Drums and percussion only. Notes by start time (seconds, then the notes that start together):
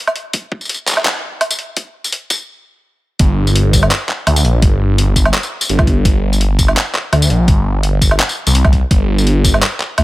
0.07 low woodblock
0.16 closed hi-hat
0.33 kick, closed hi-hat
0.52 kick
0.61 tambourine
0.65 tambourine
0.69 closed hi-hat, tambourine
0.74 tambourine
0.87 clap, closed hi-hat, tambourine
0.91 clap
0.93 clap
0.97 clap, low woodblock
0.99 clap
1.03 clap
1.05 clap, closed hi-hat
1.41 closed hi-hat, low woodblock
1.51 tambourine
1.59 closed hi-hat
1.77 kick, closed hi-hat
2.04 tambourine
2.12 closed hi-hat
2.30 kick, closed hi-hat, tambourine
3.19 kick, closed hi-hat
3.47 tambourine
3.56 closed hi-hat
3.73 kick, closed hi-hat, tambourine
3.83 low woodblock
3.91 clap, closed hi-hat
4.09 clap
4.27 closed hi-hat, low woodblock
4.36 tambourine
4.45 closed hi-hat
4.62 kick, closed hi-hat
4.98 closed hi-hat
5.16 kick, closed hi-hat, tambourine
5.25 low woodblock
5.34 clap, closed hi-hat
5.43 tambourine
5.61 tambourine
5.69 closed hi-hat
5.79 kick, low woodblock
5.87 kick, closed hi-hat
6.05 kick, closed hi-hat
6.33 tambourine
6.41 closed hi-hat
6.59 kick, closed hi-hat, tambourine
6.68 low woodblock
6.77 clap, closed hi-hat
6.95 clap
7.13 closed hi-hat, low woodblock
7.22 tambourine
7.30 closed hi-hat
7.48 kick, closed hi-hat
7.83 closed hi-hat
8.02 kick, closed hi-hat, tambourine
8.11 low woodblock
8.20 clap, closed hi-hat
8.29 tambourine
8.47 tambourine
8.55 closed hi-hat
8.65 kick, low woodblock
8.73 kick, closed hi-hat
8.91 kick, closed hi-hat
9.18 tambourine
9.27 closed hi-hat
9.44 kick, closed hi-hat, tambourine
9.54 low woodblock
9.62 clap, closed hi-hat
9.80 clap
9.98 closed hi-hat, low woodblock